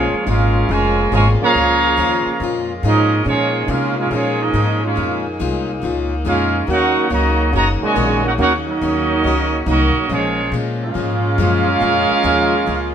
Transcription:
Already playing: A#1 A#2 F3 G#3 A#3 C#4 F4 G#4 C#5
0.13 muted upright bass stroke
0.27 G#1 A#2 G#3 C#4 F4 G#4 A#4 F5
0.69 F1 A#2 C#3 F3 G#3 C#4 F4 A#4 C#5 G#5
1.12 G#1 A#2 C#3 F3 G#3 C#4 F4 A#4 C#5 G#5
1.41 C#3 F3 A#3 G#4 C#5 F5 A#5, muted upright bass stroke
1.55 C#2 A#2 G#3 C#4 F4
1.97 D#2 A#2 G#3 C#4 F4
2.26 muted upright bass stroke
2.40 F2 A#2 G#3 C#4 F4
2.83 G#2 A#2 F3 G#3 C#4 D#4 F4 G#4 A#4 D#5
3.25 A#2 F3 G#3 A#3 C#4 D#4 F4 G#4 C#5
3.29 F4
3.67 A#2 C3 G#3 C#4 F4 G#4 A#4 F5
3.97 G#3 C#4 F4 G#4 A#4 F5
4.11 A#2 F3 G#3 A#3 C#4 F4 G#4 C#5
4.41 F3 G#3 C#4 D#4 G#4 A#4 D#5
4.53 G#2 A#2 G#3 C#4 F4
4.83 G#3 C#4 F4 G#4 A#4 F5
4.96 F2 A#2 G#3 C#4 F4
5.39 C2 A#2 G#3 C#4 F4
5.82 C#2 A#2 G#3 C#4 F4
6.25 F2 A#2 G#3 C#4 F4 G#4 A#4 F5
6.67 D#2 C#3 D#3 F#3 A#3 C#4 F#4 C#5 F#5
6.71 D#4 A#4
7.10 C#2 C#3 D#3 F#3 A#3 C#4 F#4 C#5 D#5 A#5
7.52 F#1 C#3 D#3 F#3 A#3 C#4 F#4 C#5 D#5 A#5
7.56 F#4
7.82 A#2 C#3 G#3 F#4 C#5 D#5 G#5, muted upright bass stroke
7.95 A#1 D#3 A#3 C#4 F#4
8.24 A#3 C#4 D#4 F#4 A#4 C#5 F#5
8.38 D#2 D#3 A#3 C#4 D#4 F#4 A#4 C#5 F#5
8.67 F#3 A#3 C#4 D#4 F#4 A#4 D#5
8.82 D#2 D#3 A#3 C#4 F#4
9.24 C#2 D#3 A#3 C#4 F#4
9.66 C2 D#3 F#3 A#3 C#4 D#4 F#4 A#4 D#5
9.96 muted upright bass stroke
10.09 A#1 A#2 C#3 F3 G#3 A#3 C#4 F4 G#4 C#5
10.52 A#2 F3 G#3 C#4
10.82 G#3 C#4 F4 G#4 A#4 F5
10.94 G#2 A#2 F3 G#3 C#4
11.38 F#2 A#2 F3 G#3 C#4
11.80 F2 A#2 F3 G#3 C#4
12.11 muted upright bass stroke
12.23 D#2 A#2 F3 G#3 C#4
12.66 C#2 A#2 F3 G#3 C#4

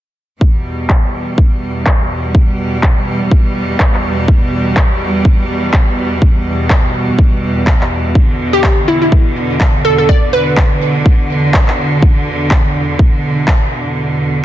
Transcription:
0.41 E2 B2 G3, kick
0.90 kick, clap
1.38 kick
1.86 kick, clap
2.35 kick
2.83 kick, clap
3.31 kick
3.80 kick, clap
3.94 clap
4.28 kick
4.77 kick, clap
5.25 kick
5.73 kick, clap
6.22 kick
6.70 kick, clap
7.19 kick
7.67 kick, clap
7.81 clap
8.15 D3, kick
8.53 G4
8.64 kick, clap
8.88 E4
9.02 E4
9.12 kick
9.61 kick, clap
9.85 A4
9.98 A4
10.09 D5, kick
10.33 B4
10.57 kick, clap
11.06 kick
11.54 kick, clap
11.68 clap
12.02 kick
12.51 kick, clap
12.99 kick
13.48 kick, clap

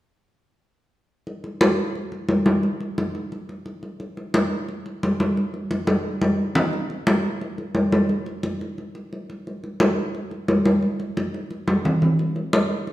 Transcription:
1.27 high conga
1.44 high conga
1.61 high conga
1.95 high conga
2.12 high conga
2.29 high conga
2.46 high conga
2.63 high conga
2.80 high conga
2.98 high conga
3.15 high conga
3.32 high conga
3.49 high conga
3.66 high conga
3.83 high conga
4.00 high conga
4.17 high conga
4.34 high conga
4.69 high conga
4.86 high conga
5.03 high conga
5.20 high conga
5.37 high conga
5.54 high conga
5.71 high conga
5.87 high conga
6.22 high conga
6.55 low conga
6.73 high conga
6.90 high conga
7.07 high conga
7.41 high conga
7.58 high conga
7.75 high conga
7.92 high conga
8.09 high conga
8.26 high conga
8.43 high conga
8.61 high conga
8.78 high conga
8.95 high conga
9.13 high conga
9.30 high conga
9.47 high conga
9.64 high conga
9.80 high conga
10.14 high conga
10.31 high conga
10.48 high conga
10.65 high conga
10.83 high conga
11.00 high conga
11.17 high conga
11.34 high conga
11.51 high conga
11.68 high conga
11.85 low conga
12.02 low conga
12.19 high conga
12.36 high conga
12.53 high conga
12.87 high conga

